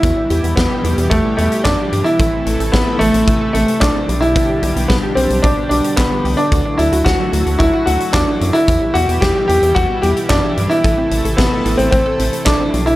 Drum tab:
HH |x-xxx-xxx-xxx-xx|x-xxx-xxx-xxx-xx|x-xxx-xxx-xxx-ox|x-xxx-xxx-xxx-xx|
CP |------------x---|------------x---|------------x---|------------x---|
SD |----o-------o---|----o-------o---|----o-------o---|----o-------o---|
BD |o---o---o---o---|o---o---o---o---|o---o---o---o---|o---o---o---o---|

HH |x-xxx-xxx-xxx-xx|x-xxx-xxx-xxx-xx|
CP |------------x---|------------x---|
SD |----o-------o---|----o-------o---|
BD |o---o---o---o---|o---o---o---o---|